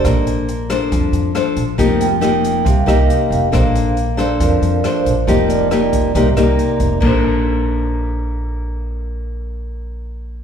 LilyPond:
<<
  \new Staff \with { instrumentName = "Vibraphone" } { \time 4/4 \key bes \major \tempo 4 = 138 d''8 r2. r8 | r8 g''4. f''8 ees''8 f''4~ | f''8 r4 d''8 bes'4 c''4 | ees''8 d''4 r2 r8 |
r1 | r1 | }
  \new Staff \with { instrumentName = "Nylon-string guitar" } { \time 4/4 \key bes \major << { <d' a' c''>4 r8 <d' a' c''>4. <d' a' c''>8 r8 | <bes ees' g'>8 r8 <bes ees' g'>4 r8 <bes ees' g'>4. | <d' a' c''>4 r8 <d' a' c''>4. <d' a' c''>8 r8 | <bes ees' g'>4 <bes ees' g'>4 <bes ees' g'>8 <bes ees' g'>4. |
<bes d' a' c''>1~ | <bes d' a' c''>1 | } \\ { bes2 f2 | f2 c2 | bes2 f2 | f2 c2 |
r1 | r1 | } >> }
  \new Staff \with { instrumentName = "Upright bass" } { \clef bass \time 4/4 \key bes \major bes,,2 f,8 f,8 r8 bes,,8 | f,,2 c,8 c,8 r8 f,,8 | bes,,2 f,8 f,8 r8 bes,,8 | f,,2 c,8 c,8 r8 f,,8 |
bes,,1~ | bes,,1 | }
  \new DrumStaff \with { instrumentName = "Drums" } \drummode { \time 4/4 <hh bd ss>8 hh8 hh8 <hh ss>8 <hh bd>8 hh8 <hh ss>8 hh8 | <hh bd>8 hh8 <hh ss>8 hh8 <hh bd>8 <hh ss>8 hh8 hh8 | <hh bd ss>8 hh8 hh8 <hh ss>8 <hh bd>8 hh8 <hh ss>8 hh8 | <hh bd>8 hh8 <hh ss>8 <hh bd>8 <hh bd>8 <hh ss>8 hh8 <hh bd>8 |
<cymc bd>4 r4 r4 r4 | r4 r4 r4 r4 | }
>>